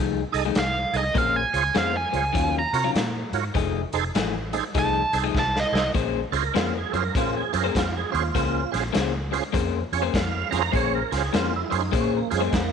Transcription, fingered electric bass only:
Already playing: C2
0.34 C2
0.56 C2
0.93 C2
1.15 A#1
1.54 C#2
1.76 F2
2.13 C#2
2.35 D#2
2.73 C3
2.95 A#2
3.33 G#2
3.55 F1
3.93 F1
4.15 A1
4.75 C2
5.13 C2
5.35 C2
5.72 C2
5.95 A#1
6.32 C#2
6.55 F2
6.93 F#2
7.15 A#2
7.54 F#2
7.75 F2
8.14 D#2
8.35 C#2
8.73 A#1
8.96 C#2
9.54 F2
9.92 F2
10.14 F2
10.52 F2
10.74 A#1
11.12 C#2
11.34 F2
11.72 F#2
11.93 A#2
12.32 F#2
12.53 F2

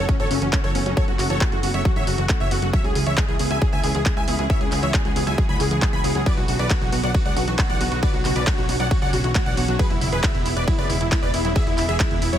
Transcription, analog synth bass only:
0.20 G#1
0.31 F#1
0.42 F#1
0.64 F#1
0.75 F#1
0.86 F#1
1.08 F#1
1.19 F#1
1.30 F#1
1.52 F#1
1.63 F#1
1.74 F#1
1.96 G#1
2.07 F#1
2.18 F#1
2.40 F#1
2.51 F#1
2.62 F#1
2.84 C#2
2.95 C#2
3.07 C#2
3.29 C#2
3.40 C#2
3.51 C#2
3.73 D2
3.84 C#2
3.95 C#2
4.17 C#2
4.28 C#2
4.39 C#2
4.61 C#2
4.72 C#2
4.83 C#2
5.05 C#2
5.16 C#2
5.27 C#2
5.49 D2
5.60 C#2
5.71 C#2
5.93 C#2
6.04 C#2
6.15 C#2
6.37 B1
6.48 B1
6.59 B1
6.81 B1
6.92 B1
7.04 B1
7.25 C#2
7.36 B1
7.48 B1
7.70 B1
7.81 B1
7.92 B1
8.14 B1
8.25 B1
8.36 B1
8.58 B1
8.69 B1
8.80 B1
9.02 C#2
9.13 B1
9.24 B1
9.46 B1
9.57 B1
9.68 B1
9.90 E1
10.01 E1
10.12 E1
10.35 E1
10.46 E1
10.57 E1
10.79 F#1
10.90 E1
11.01 E1
11.23 E1
11.34 E1
11.45 E1
11.67 E1
11.78 E1
11.89 E1
12.11 E1
12.22 E1
12.33 E1

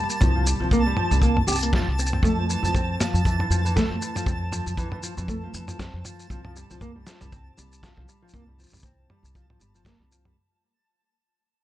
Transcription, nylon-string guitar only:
Already playing: G3
0.21 F3
0.35 F3
0.47 G3
0.61 F3
0.72 A#3
0.86 G3
0.98 F3
1.12 G3
1.23 A#3
1.48 G4
1.62 A#3
1.73 F3
1.99 C4
2.13 C4
2.24 A3
2.38 F3
2.49 E3
2.64 F3
2.74 C4
3.00 F3
3.25 E3
3.39 E3
3.50 F3
3.65 E3
3.76 A3
3.90 F3
4.01 E3
4.15 F3
4.27 C4
4.52 F3
4.77 E3
4.92 E3
5.03 F3
5.17 E3
5.28 A3
5.43 F3
5.55 E3
5.69 F3
5.80 C4
6.05 F3
6.30 F3
6.45 F3
6.56 G3
6.70 F3
6.82 A#3
6.95 G3
7.07 F3
7.21 G3
7.32 C4
7.57 G3
7.83 F3
7.97 F3
8.08 G3
8.22 F3
8.34 A#3
8.47 G3
8.59 F3
8.73 G3
8.84 C4
9.10 G3
9.35 F3
9.49 F3
9.61 G3
9.75 F3
9.86 A#3
10.00 G3
10.11 F3
10.25 G3

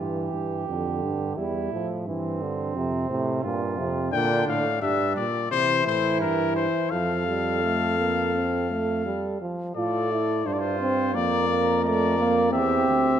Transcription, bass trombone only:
0.00 G2
0.33 G2
0.68 F2
1.03 G2
1.37 E2
1.72 A2
2.07 G2
2.76 F2
3.10 A2
3.43 G2
3.79 F2
4.13 A#2
4.48 A2
4.82 G2
5.17 A#2
5.51 C3
5.86 A2
6.22 G2
6.93 F2
9.76 A2
10.47 G2
11.16 F2
12.54 E2
12.88 D2

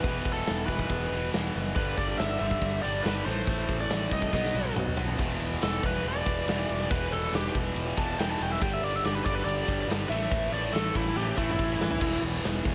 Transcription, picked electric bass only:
0.04 E1
0.25 E1
0.49 E1
0.68 E1
0.90 E1
1.12 E1
1.33 E1
1.55 F#1
1.76 G1
1.98 G1
2.19 G1
2.41 G1
2.62 G1
2.84 G1
3.05 G1
3.26 A1
3.47 A1
3.69 A1
3.90 A1
4.12 C2
4.33 B1
4.54 B1
4.76 B1
4.97 B1
5.20 E1
5.40 E1
5.63 E1
5.84 E1
6.04 E1
6.27 E1
6.47 E1
6.70 E1
6.91 E1
7.11 E1
7.32 E1
7.55 E1
7.75 E1
7.98 E1
8.18 E1
8.40 E1
8.62 G1
8.82 G1
9.03 G1
9.26 G1
9.45 G1
9.68 G1
9.87 G1
10.09 A1
10.31 A1
10.52 A1
10.73 A1
10.95 A1
11.16 A1
11.38 A1
11.59 A1
11.80 A1
12.01 E1
12.22 E1
12.44 E1
12.65 E1

